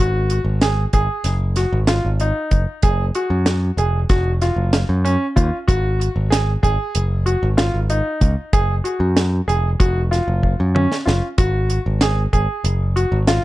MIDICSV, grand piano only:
0, 0, Header, 1, 2, 480
1, 0, Start_track
1, 0, Tempo, 632911
1, 2152, Time_signature, 9, 3, 24, 8
1, 10196, End_track
2, 0, Start_track
2, 0, Title_t, "Grand piano"
2, 0, Program_c, 0, 0
2, 0, Note_on_c, 0, 66, 73
2, 293, Note_off_c, 0, 66, 0
2, 472, Note_on_c, 0, 68, 69
2, 622, Note_off_c, 0, 68, 0
2, 711, Note_on_c, 0, 68, 70
2, 1010, Note_off_c, 0, 68, 0
2, 1188, Note_on_c, 0, 66, 61
2, 1339, Note_off_c, 0, 66, 0
2, 1425, Note_on_c, 0, 65, 66
2, 1577, Note_off_c, 0, 65, 0
2, 1673, Note_on_c, 0, 63, 63
2, 1972, Note_off_c, 0, 63, 0
2, 2147, Note_on_c, 0, 68, 70
2, 2298, Note_off_c, 0, 68, 0
2, 2391, Note_on_c, 0, 66, 63
2, 2690, Note_off_c, 0, 66, 0
2, 2870, Note_on_c, 0, 68, 68
2, 3019, Note_off_c, 0, 68, 0
2, 3107, Note_on_c, 0, 66, 71
2, 3258, Note_off_c, 0, 66, 0
2, 3350, Note_on_c, 0, 65, 63
2, 3649, Note_off_c, 0, 65, 0
2, 3826, Note_on_c, 0, 61, 68
2, 3977, Note_off_c, 0, 61, 0
2, 4065, Note_on_c, 0, 65, 64
2, 4216, Note_off_c, 0, 65, 0
2, 4305, Note_on_c, 0, 66, 77
2, 4606, Note_off_c, 0, 66, 0
2, 4781, Note_on_c, 0, 68, 68
2, 4933, Note_off_c, 0, 68, 0
2, 5028, Note_on_c, 0, 68, 74
2, 5328, Note_off_c, 0, 68, 0
2, 5505, Note_on_c, 0, 66, 65
2, 5656, Note_off_c, 0, 66, 0
2, 5744, Note_on_c, 0, 65, 72
2, 5895, Note_off_c, 0, 65, 0
2, 5990, Note_on_c, 0, 63, 64
2, 6289, Note_off_c, 0, 63, 0
2, 6470, Note_on_c, 0, 68, 75
2, 6620, Note_off_c, 0, 68, 0
2, 6705, Note_on_c, 0, 66, 56
2, 7006, Note_off_c, 0, 66, 0
2, 7188, Note_on_c, 0, 68, 70
2, 7338, Note_off_c, 0, 68, 0
2, 7430, Note_on_c, 0, 66, 72
2, 7580, Note_off_c, 0, 66, 0
2, 7669, Note_on_c, 0, 65, 66
2, 7969, Note_off_c, 0, 65, 0
2, 8150, Note_on_c, 0, 61, 62
2, 8300, Note_off_c, 0, 61, 0
2, 8384, Note_on_c, 0, 65, 54
2, 8536, Note_off_c, 0, 65, 0
2, 8631, Note_on_c, 0, 66, 75
2, 8930, Note_off_c, 0, 66, 0
2, 9112, Note_on_c, 0, 68, 63
2, 9261, Note_off_c, 0, 68, 0
2, 9351, Note_on_c, 0, 68, 70
2, 9650, Note_off_c, 0, 68, 0
2, 9829, Note_on_c, 0, 66, 62
2, 9979, Note_off_c, 0, 66, 0
2, 10070, Note_on_c, 0, 65, 75
2, 10196, Note_off_c, 0, 65, 0
2, 10196, End_track
0, 0, End_of_file